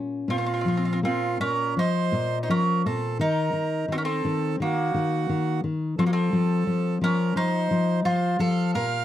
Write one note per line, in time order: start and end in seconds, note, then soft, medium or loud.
0.00 0.25 A#2 medium
0.00 0.28 C#4 soft
0.28 1.39 A#2 medium
0.28 0.37 C4 medium
0.28 1.00 F4 medium
0.38 0.45 C4 medium
0.46 0.52 C4 medium
0.54 0.60 C4 soft
0.61 0.67 C4 medium
0.65 1.01 F3 soft
0.65 0.76 C4 soft
0.77 0.84 C4 medium
0.85 0.91 C4 medium
0.93 0.99 C4 medium
1.03 1.38 A#3 medium
1.03 1.40 C4 medium
1.03 1.38 F4 medium
1.40 1.75 A#2 medium
1.40 1.78 C#4 medium
1.40 1.75 A#4 medium
1.77 2.12 F3 medium
1.77 2.39 D#4 medium
1.77 2.39 C5 medium
2.12 2.47 A#2 medium
2.43 2.49 D#4 medium
2.43 2.49 C5 medium
2.50 2.84 F3 medium
2.50 2.86 C#4 medium
2.50 2.82 A#4 medium
2.86 3.19 A#2 medium
2.86 3.18 C4 medium
2.86 3.18 A4 medium
3.19 3.52 D#3 medium
3.19 3.92 D#4 medium
3.19 3.86 A#4 medium
3.53 3.87 D#3 soft
3.88 4.23 D#3 soft
3.88 3.97 F#4 medium
3.92 3.97 C4 medium
3.97 4.04 C#4 medium
3.97 4.03 A#4 medium
4.05 4.62 C4 medium
4.05 4.56 A4 medium
4.25 4.58 D#3 medium
4.60 4.93 D#3 medium
4.60 5.60 A#3 medium
4.60 5.61 F#4 medium
4.94 5.28 D#3 medium
5.29 5.62 D#3 medium
5.64 5.97 D#3 medium
5.98 6.31 F3 medium
5.98 6.05 C4 medium
5.98 6.04 A4 medium
6.05 6.12 A#3 medium
6.05 6.11 F#4 medium
6.12 6.99 C4 medium
6.12 6.98 A4 medium
6.33 6.66 F3 medium
6.67 7.00 F3 medium
7.01 7.34 F3 medium
7.01 7.38 C#4 medium
7.01 7.34 A#4 medium
7.36 7.69 F3 medium
7.36 8.05 D#4 medium
7.36 8.00 C5 medium
7.71 8.04 F3 medium
8.05 8.38 F3 medium
8.05 8.37 F4 medium
8.05 8.37 C5 medium
8.38 8.73 F3 medium
8.38 8.75 A4 medium
8.38 8.71 F5 medium
8.74 9.05 A#2 medium
8.74 9.05 A#4 medium
8.74 9.05 F5 medium